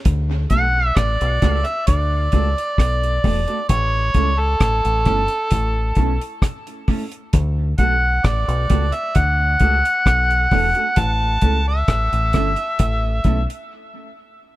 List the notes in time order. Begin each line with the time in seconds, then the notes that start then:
0.05 D2, kick, closed hi-hat
0.50 B1 A3 D4 F#4 A4 F#5, kick, closed hi-hat
0.87 E5
0.97 A1 D5, kick, cross-stick, closed hi-hat
1.21 B1, closed hi-hat
1.42 C#2 A3 D4 F#4 A4, kick, cross-stick, closed hi-hat
1.65 E5, muted clean electric guitar stroke, closed hi-hat
1.87 D2 D5, kick, closed hi-hat
2.32 C#2 A3 D4 F#4 A4, kick, closed hi-hat
2.58 closed hi-hat
2.78 B1, kick, cross-stick, closed hi-hat
3.03 closed hi-hat
3.24 E1 A3 D4 F#4 A4, kick, open hi-hat
3.48 A3 D4 F#4 A4, closed hi-hat
3.69 A1 C#5, kick, closed hi-hat
4.14 C#2 A3 C#4 E4 A4, kick, closed hi-hat
4.39 A4
4.60 A1, kick, cross-stick, closed hi-hat
4.85 A1, closed hi-hat
5.05 G1 A3 C#4 E4 A4, kick, closed hi-hat
5.28 muted clean electric guitar stroke, closed hi-hat
5.51 A1, kick, closed hi-hat
5.95 B1 A3 C#4 E4 A4, kick, closed hi-hat
6.21 closed hi-hat
6.42 kick, cross-stick, closed hi-hat
6.67 closed hi-hat
6.88 A3 C#4 E4 A4, kick, open hi-hat
7.12 closed hi-hat
7.33 D2, kick, closed hi-hat
7.78 B1 A3 D4 F#4 A4 F#5, kick, closed hi-hat
8.24 A1 D5, kick, cross-stick, closed hi-hat
8.48 B1, closed hi-hat
8.70 C#2 A3 D4 F#4 A4, kick, closed hi-hat
8.92 E5, muted clean electric guitar stroke, closed hi-hat
9.15 D2 F#5, kick, closed hi-hat
9.59 C#2 A3 D4 F#4 A4, kick, closed hi-hat
9.85 closed hi-hat
10.06 B1, kick, cross-stick, closed hi-hat
10.30 closed hi-hat
10.51 E1 A3 D4 F#4 A4, kick, open hi-hat
10.75 A3 D4 F#4 A4, closed hi-hat
10.96 A1 A5, kick, closed hi-hat
11.41 C#2 A3 C#4 E4 A4, kick, closed hi-hat
11.68 E5
11.88 A1, kick, cross-stick, closed hi-hat
12.12 A1, closed hi-hat
12.33 G1 A3 C#4 E4 A4, kick, cross-stick, closed hi-hat
12.56 muted clean electric guitar stroke, closed hi-hat
12.79 A1, kick, closed hi-hat
13.24 B1 A3 C#4 E4 A4, kick, closed hi-hat
13.50 closed hi-hat